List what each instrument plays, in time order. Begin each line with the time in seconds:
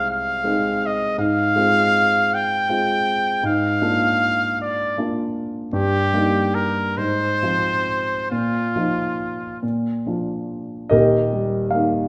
Already playing: grand piano C2 G#3 C4 D#4
0.11 trumpet F5
0.44 grand piano G#3 C4 D#4
0.86 trumpet D#5
1.18 grand piano G#2, trumpet F5
1.56 grand piano G#3 C4 F4
2.34 trumpet G5
2.69 grand piano G#3 C4 F4
3.43 grand piano G#2, trumpet F5
3.82 grand piano A#3 D4 F4
4.62 trumpet D5
4.98 grand piano A#3 D4 F4
5.73 grand piano G2, trumpet G4
6.13 grand piano G3 A#3 D#4
6.55 trumpet A#4
6.97 grand piano G#2, trumpet C5
7.43 grand piano F3 C4 F4
8.31 grand piano A#2, trumpet F4
8.76 grand piano F3 D#4 F4
9.63 grand piano A#2
10.06 grand piano F3 D4 F4
10.89 grand piano D#1 D#2 G4 A#4 D#5
11.33 grand piano G3
11.71 grand piano A#3 D#4 F5